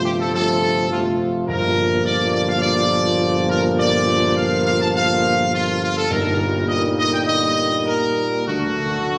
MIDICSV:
0, 0, Header, 1, 6, 480
1, 0, Start_track
1, 0, Tempo, 578035
1, 1231, Time_signature, 4, 2, 24, 8
1, 5549, Tempo, 599401
1, 7549, End_track
2, 0, Start_track
2, 0, Title_t, "Trumpet section"
2, 0, Program_c, 0, 61
2, 36, Note_on_c, 0, 67, 99
2, 89, Note_off_c, 0, 67, 0
2, 166, Note_on_c, 0, 69, 84
2, 268, Note_off_c, 0, 69, 0
2, 278, Note_on_c, 0, 69, 117
2, 722, Note_off_c, 0, 69, 0
2, 758, Note_on_c, 0, 65, 93
2, 864, Note_off_c, 0, 65, 0
2, 1233, Note_on_c, 0, 70, 113
2, 1675, Note_off_c, 0, 70, 0
2, 1703, Note_on_c, 0, 74, 108
2, 1925, Note_off_c, 0, 74, 0
2, 1943, Note_on_c, 0, 74, 115
2, 1996, Note_off_c, 0, 74, 0
2, 2061, Note_on_c, 0, 77, 103
2, 2173, Note_off_c, 0, 77, 0
2, 2173, Note_on_c, 0, 74, 127
2, 2864, Note_off_c, 0, 74, 0
2, 2902, Note_on_c, 0, 70, 106
2, 3010, Note_off_c, 0, 70, 0
2, 3144, Note_on_c, 0, 74, 127
2, 3591, Note_off_c, 0, 74, 0
2, 3626, Note_on_c, 0, 77, 115
2, 3856, Note_off_c, 0, 77, 0
2, 3866, Note_on_c, 0, 77, 116
2, 3976, Note_off_c, 0, 77, 0
2, 3993, Note_on_c, 0, 81, 117
2, 4045, Note_off_c, 0, 81, 0
2, 4112, Note_on_c, 0, 77, 127
2, 4559, Note_off_c, 0, 77, 0
2, 4596, Note_on_c, 0, 65, 108
2, 4816, Note_off_c, 0, 65, 0
2, 4837, Note_on_c, 0, 65, 108
2, 4945, Note_off_c, 0, 65, 0
2, 4959, Note_on_c, 0, 69, 112
2, 5065, Note_off_c, 0, 69, 0
2, 5078, Note_on_c, 0, 70, 100
2, 5551, Note_on_c, 0, 75, 106
2, 5554, Note_off_c, 0, 70, 0
2, 5656, Note_off_c, 0, 75, 0
2, 5789, Note_on_c, 0, 75, 117
2, 5896, Note_off_c, 0, 75, 0
2, 5913, Note_on_c, 0, 79, 101
2, 5964, Note_off_c, 0, 79, 0
2, 6014, Note_on_c, 0, 75, 119
2, 6461, Note_off_c, 0, 75, 0
2, 6492, Note_on_c, 0, 70, 95
2, 6946, Note_off_c, 0, 70, 0
2, 6978, Note_on_c, 0, 66, 96
2, 7549, Note_off_c, 0, 66, 0
2, 7549, End_track
3, 0, Start_track
3, 0, Title_t, "French horn section"
3, 0, Program_c, 1, 60
3, 0, Note_on_c, 1, 57, 77
3, 0, Note_on_c, 1, 65, 74
3, 240, Note_off_c, 1, 57, 0
3, 240, Note_off_c, 1, 65, 0
3, 269, Note_on_c, 1, 65, 82
3, 271, Note_on_c, 1, 57, 77
3, 718, Note_off_c, 1, 65, 0
3, 719, Note_off_c, 1, 57, 0
3, 747, Note_on_c, 1, 57, 79
3, 748, Note_on_c, 1, 65, 85
3, 1195, Note_off_c, 1, 57, 0
3, 1195, Note_off_c, 1, 65, 0
3, 1224, Note_on_c, 1, 58, 86
3, 1225, Note_on_c, 1, 65, 78
3, 4927, Note_off_c, 1, 58, 0
3, 4927, Note_off_c, 1, 65, 0
3, 5068, Note_on_c, 1, 63, 78
3, 5070, Note_on_c, 1, 58, 80
3, 6948, Note_off_c, 1, 63, 0
3, 6949, Note_off_c, 1, 58, 0
3, 6975, Note_on_c, 1, 62, 68
3, 6977, Note_on_c, 1, 57, 70
3, 7549, Note_off_c, 1, 57, 0
3, 7549, Note_off_c, 1, 62, 0
3, 7549, End_track
4, 0, Start_track
4, 0, Title_t, "Trombone section"
4, 0, Program_c, 2, 61
4, 0, Note_on_c, 2, 48, 76
4, 0, Note_on_c, 2, 53, 74
4, 238, Note_off_c, 2, 48, 0
4, 238, Note_off_c, 2, 53, 0
4, 270, Note_on_c, 2, 53, 82
4, 276, Note_on_c, 2, 48, 73
4, 718, Note_off_c, 2, 53, 0
4, 721, Note_off_c, 2, 48, 0
4, 746, Note_on_c, 2, 53, 74
4, 747, Note_on_c, 2, 48, 76
4, 1195, Note_off_c, 2, 48, 0
4, 1195, Note_off_c, 2, 53, 0
4, 1235, Note_on_c, 2, 53, 88
4, 1237, Note_on_c, 2, 46, 83
4, 4919, Note_off_c, 2, 46, 0
4, 4919, Note_off_c, 2, 53, 0
4, 5060, Note_on_c, 2, 46, 92
4, 5066, Note_on_c, 2, 55, 80
4, 6945, Note_off_c, 2, 46, 0
4, 6980, Note_off_c, 2, 55, 0
4, 6987, Note_on_c, 2, 50, 72
4, 6987, Note_on_c, 2, 57, 72
4, 7549, Note_off_c, 2, 50, 0
4, 7549, Note_off_c, 2, 57, 0
4, 7549, End_track
5, 0, Start_track
5, 0, Title_t, "Timpani"
5, 0, Program_c, 3, 47
5, 1229, Note_on_c, 3, 43, 88
5, 1910, Note_off_c, 3, 43, 0
5, 5072, Note_on_c, 3, 43, 100
5, 5754, Note_off_c, 3, 43, 0
5, 6980, Note_on_c, 3, 50, 36
5, 7033, Note_off_c, 3, 50, 0
5, 7043, Note_on_c, 3, 50, 38
5, 7098, Note_off_c, 3, 50, 0
5, 7108, Note_on_c, 3, 50, 43
5, 7155, Note_off_c, 3, 50, 0
5, 7164, Note_on_c, 3, 50, 41
5, 7218, Note_off_c, 3, 50, 0
5, 7228, Note_on_c, 3, 50, 42
5, 7281, Note_off_c, 3, 50, 0
5, 7291, Note_on_c, 3, 50, 45
5, 7344, Note_off_c, 3, 50, 0
5, 7353, Note_on_c, 3, 50, 49
5, 7406, Note_off_c, 3, 50, 0
5, 7416, Note_on_c, 3, 50, 48
5, 7468, Note_off_c, 3, 50, 0
5, 7478, Note_on_c, 3, 50, 51
5, 7530, Note_off_c, 3, 50, 0
5, 7549, End_track
6, 0, Start_track
6, 0, Title_t, "Tuba"
6, 0, Program_c, 4, 58
6, 0, Note_on_c, 4, 31, 71
6, 1083, Note_off_c, 4, 31, 0
6, 1224, Note_on_c, 4, 31, 92
6, 5032, Note_off_c, 4, 31, 0
6, 5066, Note_on_c, 4, 31, 83
6, 6715, Note_off_c, 4, 31, 0
6, 6979, Note_on_c, 4, 38, 72
6, 7549, Note_off_c, 4, 38, 0
6, 7549, End_track
0, 0, End_of_file